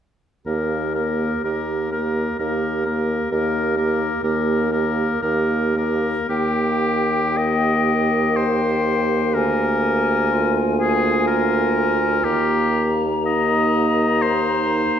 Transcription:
0.46 D#2 A#3 G4 A#4
0.95 A#3 G4 A#4
1.44 D#2 A#3 G4 A#4
1.92 A#3 G4 A#4
2.39 D#2 A#3 G4 A#4
2.86 A#3 G4 A#4
3.31 D#2 A#3 G4 A#4
3.77 A#3 G4 A#4
4.23 D#2 A#3 G4 A#4
4.71 A#3 G4 A#4
5.22 D#2 A#3 G4 A#4
5.76 A#3 G4 A#4
6.29 D#2 A#3 G4 G5
7.38 D#5
8.36 C5
9.34 D2 A#4 G#5
10.32 F4
10.79 G#4
11.27 A#4
12.24 D#2 A#3 G4 A#5
13.26 D#4 D#5
14.22 C5

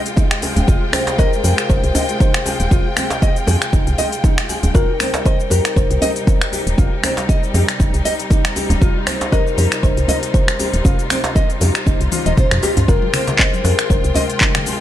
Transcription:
Already playing: C3 G#3 F4 G5
0.06 closed hi-hat, shaker
0.16 D#4, kick, djembe tone, shaker
0.31 finger snap, closed hi-hat, shaker
0.42 G#4, open hi-hat, djembe tone, shaker
0.56 D#1, closed hi-hat, djembe bass, shaker
0.67 F1 F4, kick, djembe tone, shaker
0.93 C4 C5, finger snap, open hi-hat, djembe tone, shaker
1.07 closed hi-hat, djembe slap, shaker
1.18 A#4 D#5, kick, djembe tone, shaker
1.33 shaker
1.44 F2 G#4, open hi-hat, djembe tone, shaker
1.58 finger snap, closed hi-hat, shaker
1.70 F1 D#4 C5, kick, djembe tone, shaker
1.84 C2, closed hi-hat, shaker
1.95 D#5, open hi-hat, djembe tone, djembe bass, shaker
2.09 closed hi-hat, shaker
2.20 D#4 C5, kick, djembe tone, shaker
2.34 finger snap, closed hi-hat, shaker
2.46 G#4, open hi-hat, djembe tone, shaker
2.60 D#1, closed hi-hat, shaker
2.71 F1 F4, kick, djembe tone, shaker
2.97 C4, finger snap, open hi-hat, djembe tone, shaker
3.10 closed hi-hat, djembe slap, shaker
3.22 D#5, kick, djembe tone, shaker
3.36 closed hi-hat, shaker
3.47 F2 G#4, open hi-hat, djembe tone, shaker
3.62 finger snap, closed hi-hat, shaker
3.73 F1 D#4, kick, djembe tone, shaker
3.87 C2, closed hi-hat, shaker
3.98 D#5, open hi-hat, djembe tone, shaker
4.12 closed hi-hat, shaker
4.24 D#4, kick, djembe tone, shaker
4.38 finger snap, closed hi-hat, shaker
4.49 G#4, open hi-hat, djembe tone, shaker
4.63 D#1, closed hi-hat, djembe bass, shaker
4.74 F1 C3 G3 D#4 F4 A#4, kick, djembe tone, shaker
5.00 C4, finger snap, open hi-hat, djembe tone, shaker
5.14 closed hi-hat, djembe slap, shaker
5.26 C5 D#5, kick, djembe tone, shaker
5.40 shaker
5.50 F2 G4 A#4, open hi-hat, djembe tone, shaker
5.65 finger snap, closed hi-hat, shaker
5.76 F1 D#4 C5, kick, djembe tone, shaker
5.91 C2, closed hi-hat, shaker
6.02 D#5, open hi-hat, djembe tone, djembe bass, shaker
6.16 closed hi-hat, shaker
6.27 D#4, kick, djembe tone, shaker
6.41 finger snap, closed hi-hat, shaker
6.52 G4, open hi-hat, djembe tone, shaker
6.67 D#1, closed hi-hat, shaker
6.78 F1 F4, kick, djembe tone, shaker
7.03 C4, finger snap, open hi-hat, djembe tone, shaker
7.17 closed hi-hat, djembe slap, shaker
7.29 D#5, kick, djembe tone, shaker
7.43 shaker
7.54 F2 G4, open hi-hat, djembe tone, shaker
7.68 finger snap, closed hi-hat, shaker
7.80 F1 D#4, kick, djembe tone, shaker
7.94 C2, closed hi-hat, shaker
8.05 D#5, open hi-hat, djembe tone, shaker
8.19 closed hi-hat, shaker
8.30 D#4, kick, djembe tone, shaker
8.45 finger snap, closed hi-hat, shaker
8.56 G4, open hi-hat, djembe tone, shaker
8.70 D#1, closed hi-hat, djembe bass, shaker
8.81 F1 F4, kick, djembe tone, shaker
9.07 C4 C5, finger snap, open hi-hat, djembe tone, shaker
9.21 closed hi-hat, djembe slap, shaker
9.32 A#4 D#5, kick, djembe tone, shaker
9.47 shaker
9.58 F2 G4, open hi-hat, djembe tone, shaker
9.72 finger snap, closed hi-hat, shaker
9.83 F1 D#4 C5, kick, djembe tone, shaker
9.97 C2, closed hi-hat, shaker
10.08 D#5, open hi-hat, djembe tone, djembe bass, shaker
10.23 closed hi-hat, shaker
10.34 D#4 C5, kick, djembe tone, shaker
10.48 finger snap, closed hi-hat, shaker
10.59 G4, open hi-hat, djembe tone, shaker
10.74 D#1, closed hi-hat, shaker
10.85 F1 F4, kick, djembe tone, shaker
10.99 closed hi-hat, shaker
11.10 C4, finger snap, open hi-hat, djembe tone, shaker
11.24 closed hi-hat, djembe slap, shaker
11.35 D#5, kick, djembe tone, shaker
11.50 closed hi-hat, shaker
11.61 F2 G4, open hi-hat, djembe tone, shaker
11.75 finger snap, closed hi-hat, shaker
11.86 F1 D#4, kick, djembe tone, shaker
12.01 C2, closed hi-hat, shaker
12.12 F4, open hi-hat, high tom, djembe tone, shaker
12.26 D#1 D#5, closed hi-hat, high tom, shaker
12.37 C5, kick, mid tom, djembe tone, shaker
12.51 F2, finger snap, closed hi-hat, mid tom, shaker
12.63 G4, open hi-hat, djembe slap, djembe tone, shaker
12.77 closed hi-hat, mid tom, djembe bass, shaker
12.88 F1 G#3 F4 A#4 G5, kick, muted conga, djembe tone, shaker
13.02 high conga
13.13 C4, finger snap, open hi-hat, djembe tone, low conga, shaker
13.27 closed hi-hat, muted conga, djembe slap, high conga, low conga, shaker
13.39 C5 D#5, kick, clap, djembe tone, shaker
13.53 high conga, shaker
13.64 F2 G#4 A#4, open hi-hat, muted conga, djembe tone, shaker
13.79 finger snap, closed hi-hat, shaker
13.90 F1 D#4 C5, kick, high conga, djembe tone, shaker
14.04 C2, closed hi-hat, muted conga, shaker
14.14 D#5, open hi-hat, djembe tone, djembe bass, shaker
14.30 closed hi-hat, shaker
14.41 D#4, kick, clap, djembe tone, shaker
14.54 finger snap, closed hi-hat, muted conga, high conga, low conga, shaker
14.66 G#4, open hi-hat, high conga, djembe tone, shaker

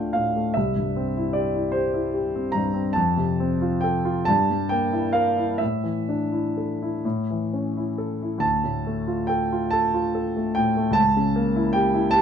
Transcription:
Already playing: D2 A2 A3 D4 F4 F5 G5
0.13 A2 F5
0.36 A3
0.54 C2 E5
0.76 G2
0.96 C4
1.17 E4
1.33 G4 D5
1.55 E4
1.72 G4 C5
1.94 E4
2.14 G4
2.35 C4
2.52 G2 A#5
2.74 C4
2.93 F2 A5
3.17 C3
3.40 C4
3.62 F4
3.81 A4 G5
4.05 F4
4.25 G2 A5
4.50 G3
4.69 A#3 G5
4.92 E4
5.13 A#4 F5
5.37 E4
5.58 A2 E5
5.84 E3
6.09 D4
6.32 E4
6.57 A4
6.83 E4
7.05 A2
7.31 E3
7.53 C#4
7.77 E4
7.98 A4
8.22 E4
8.38 D2 A5
8.64 A2
8.87 A3
9.08 F4
9.27 A4 G5
9.52 F4
9.71 A4 A5
9.94 F4
10.15 A4
10.36 A3
10.55 A2 G5
10.77 A3
10.91 C#2 A5
11.17 C#3
11.36 A#3
11.56 E4
11.73 G4 G5
11.94 E4
12.11 G4 A5

